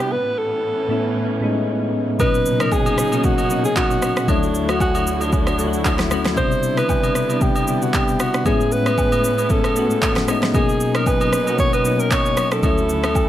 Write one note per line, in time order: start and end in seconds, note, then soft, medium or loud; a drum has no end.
0.00 0.13 C3 medium
0.00 0.13 G3 medium
0.00 0.13 B3 medium
0.00 2.16 B3 medium
0.00 0.13 D4 medium
0.00 0.13 E4 medium
0.00 0.13 F#4 medium
0.00 0.13 G4 medium
0.11 2.18 A2 medium
0.11 2.18 E3 medium
0.11 2.18 C#4 medium
0.11 0.40 B4 loud
0.38 1.42 A4 medium
0.88 1.32 A2 medium
0.88 1.32 A3 medium
0.88 1.32 B3 medium
0.88 1.33 C#4 medium
0.88 1.33 E4 medium
1.40 2.05 A2 medium
1.40 2.05 G#3 medium
1.40 2.05 B3 medium
1.40 2.06 C#4 medium
1.40 2.06 D#4 medium
2.19 2.94 A#2 medium
2.19 2.93 B2 medium
2.19 4.26 C#3 medium
2.19 2.93 F#3 medium
2.19 4.26 F#3 medium
2.19 4.26 C#4 medium
2.19 2.94 C#4 medium
2.19 4.26 D#4 medium
2.19 2.95 D#4 loud
2.19 2.62 B4 loud
2.19 kick loud
2.19 high agogo medium
2.19 shaker medium
2.34 shaker medium
2.46 shaker medium
2.60 2.74 A#4 loud
2.60 cross-stick loud
2.60 high agogo medium
2.60 shaker soft
2.72 3.19 G#4 loud
2.72 kick loud
2.72 low woodblock medium
2.72 shaker medium
2.86 high agogo medium
2.86 shaker medium
2.98 cross-stick medium
2.98 shaker loud
3.11 3.43 B2 medium
3.11 3.43 F#3 medium
3.11 3.43 A#3 medium
3.11 3.44 C#4 medium
3.11 3.44 D#4 medium
3.11 high agogo medium
3.11 shaker medium
3.19 3.26 G#4 medium
3.24 3.64 F#4 loud
3.24 kick loud
3.24 shaker medium
3.38 high agogo medium
3.38 shaker medium
3.49 4.13 B2 medium
3.49 4.14 F#3 medium
3.49 4.14 A#3 medium
3.49 4.15 C#4 medium
3.49 4.15 D#4 medium
3.49 shaker medium
3.65 3.76 G#4 medium
3.65 shaker medium
3.76 4.30 F#4 loud
3.76 kick loud
3.76 clap loud
3.76 high agogo medium
3.76 shaker medium
3.91 shaker medium
4.02 cross-stick medium
4.02 high agogo medium
4.02 shaker loud
4.17 cross-stick loud
4.17 shaker soft
4.27 5.12 D2 medium
4.27 6.35 D2 medium
4.27 6.35 D3 medium
4.27 5.12 F#3 medium
4.27 5.13 A3 medium
4.27 4.71 D4 medium
4.27 8.42 E4 medium
4.27 5.14 E4 loud
4.27 6.35 F#4 medium
4.27 5.13 C#5 medium
4.27 kick loud
4.27 high agogo medium
4.27 shaker medium
4.43 shaker medium
4.55 shaker medium
4.69 4.80 F#4 medium
4.69 cross-stick loud
4.69 high agogo medium
4.69 shaker soft
4.80 5.23 F#4 medium
4.80 kick medium
4.80 low woodblock medium
4.80 shaker medium
4.95 high agogo medium
4.95 shaker medium
5.07 shaker loud
5.21 5.33 D4 medium
5.21 high agogo medium
5.21 shaker medium
5.32 6.07 D4 medium
5.32 kick loud
5.32 shaker medium
5.47 cross-stick medium
5.47 high agogo medium
5.47 shaker medium
5.58 6.01 D2 medium
5.58 6.02 F#3 medium
5.58 6.02 A3 medium
5.58 5.67 E4 medium
5.58 6.02 C#5 medium
5.58 shaker medium
5.67 6.06 F#4 medium
5.73 shaker medium
5.85 kick medium
5.85 clap loud
5.85 high agogo medium
5.85 shaker medium
5.99 cross-stick loud
5.99 snare medium
5.99 shaker medium
6.10 6.32 D2 medium
6.10 6.32 F#3 medium
6.10 6.33 A3 medium
6.10 6.33 C#4 medium
6.10 6.34 F#4 medium
6.10 cross-stick loud
6.10 high agogo medium
6.10 shaker loud
6.25 cross-stick loud
6.25 snare medium
6.25 shaker soft
6.36 7.11 B2 medium
6.36 7.10 C3 loud
6.36 8.44 D3 medium
6.36 7.11 G3 medium
6.36 8.44 D4 medium
6.36 7.11 D4 medium
6.36 7.12 E4 loud
6.36 6.75 C5 loud
6.36 kick loud
6.36 high agogo medium
6.36 shaker medium
6.52 shaker medium
6.63 shaker medium
6.77 7.44 B4 loud
6.77 cross-stick loud
6.77 high agogo medium
6.77 shaker soft
6.89 kick loud
6.89 low woodblock medium
6.89 shaker medium
7.03 high agogo medium
7.03 shaker medium
7.15 cross-stick medium
7.15 shaker loud
7.29 7.60 C3 medium
7.29 7.60 G3 medium
7.29 7.61 B3 medium
7.29 7.61 D4 medium
7.29 7.62 E4 medium
7.29 high agogo medium
7.29 shaker medium
7.41 7.84 G4 medium
7.41 kick loud
7.41 shaker medium
7.56 high agogo medium
7.56 shaker medium
7.66 8.31 C3 medium
7.66 8.31 G3 medium
7.66 8.31 B3 medium
7.66 8.32 D4 medium
7.66 8.32 E4 medium
7.66 shaker medium
7.82 7.96 F#4 medium
7.82 shaker medium
7.94 8.22 G4 medium
7.94 kick loud
7.94 clap loud
7.94 high agogo medium
7.94 shaker medium
8.08 shaker medium
8.20 8.46 F#4 medium
8.20 cross-stick loud
8.20 high agogo medium
8.20 shaker medium
8.34 cross-stick loud
8.34 shaker soft
8.45 9.29 A2 medium
8.45 10.52 A2 medium
8.45 9.30 G#3 medium
8.45 10.52 B3 medium
8.45 9.30 B3 medium
8.45 10.52 C#4 medium
8.45 9.31 C#4 medium
8.45 9.31 E4 loud
8.45 8.74 G#4 loud
8.45 kick loud
8.45 high agogo medium
8.45 shaker medium
8.61 shaker soft
8.72 9.53 B4 loud
8.72 shaker medium
8.86 cross-stick loud
8.86 high agogo medium
8.86 shaker soft
8.98 kick medium
8.98 low woodblock medium
8.98 shaker medium
9.12 high agogo medium
9.12 shaker medium
9.24 shaker loud
9.38 high agogo medium
9.38 shaker medium
9.50 10.29 A4 medium
9.50 kick loud
9.50 shaker medium
9.64 cross-stick medium
9.64 high agogo medium
9.64 shaker medium
9.75 10.19 A2 medium
9.75 10.19 A3 medium
9.75 10.19 B3 medium
9.75 10.20 C#4 medium
9.75 10.20 F#4 medium
9.75 shaker medium
9.91 shaker medium
10.02 kick medium
10.02 clap loud
10.02 high agogo medium
10.02 shaker medium
10.16 cross-stick loud
10.16 snare medium
10.16 shaker medium
10.27 10.49 A2 medium
10.27 10.50 G#3 medium
10.27 10.50 B3 medium
10.27 10.51 C#4 medium
10.27 10.51 D#4 medium
10.27 cross-stick medium
10.27 high agogo medium
10.27 shaker loud
10.43 cross-stick loud
10.43 snare medium
10.43 shaker soft
10.54 11.28 B2 loud
10.54 12.61 B2 medium
10.54 12.61 F#3 medium
10.54 11.28 F#3 medium
10.54 11.29 A#3 medium
10.54 12.61 C#4 medium
10.54 11.29 C#4 medium
10.54 12.61 D#4 medium
10.54 11.29 D#4 loud
10.54 10.97 G#4 loud
10.54 kick loud
10.54 high agogo medium
10.54 shaker medium
10.69 shaker medium
10.80 shaker medium
10.95 11.09 A#4 medium
10.95 cross-stick loud
10.95 high agogo medium
10.95 shaker soft
11.06 11.59 B4 loud
11.06 kick medium
11.06 low woodblock medium
11.06 shaker medium
11.21 high agogo medium
11.21 shaker medium
11.33 cross-stick medium
11.33 shaker loud
11.46 11.77 B2 medium
11.46 11.78 F#3 medium
11.46 11.78 A#3 medium
11.46 11.79 C#4 medium
11.46 11.79 F#4 medium
11.46 high agogo medium
11.46 shaker soft
11.59 11.73 C#5 loud
11.59 kick loud
11.59 shaker medium
11.73 12.02 B4 medium
11.73 high agogo medium
11.73 shaker medium
11.84 12.48 B2 medium
11.84 12.49 F#3 medium
11.84 12.49 A#3 medium
11.84 12.50 C#4 medium
11.84 12.50 D#4 medium
11.84 shaker medium
11.99 12.13 A#4 medium
11.99 shaker medium
12.11 12.52 C#5 loud
12.11 kick loud
12.11 clap loud
12.11 high agogo medium
12.11 shaker medium
12.26 shaker medium
12.37 cross-stick loud
12.37 high agogo medium
12.37 shaker loud
12.52 13.29 A4 loud
12.52 cross-stick loud
12.52 shaker soft
12.62 13.29 D2 medium
12.62 13.29 C#3 medium
12.62 13.29 F#3 medium
12.62 13.29 A3 medium
12.62 13.29 C#4 medium
12.62 13.29 E4 medium
12.62 13.29 E4 loud
12.62 13.29 F#4 medium
12.62 kick loud
12.62 high agogo medium
12.62 shaker medium
12.78 shaker soft
12.89 shaker medium
13.04 cross-stick loud
13.04 high agogo medium
13.04 shaker soft
13.15 kick medium
13.15 low woodblock medium
13.15 shaker medium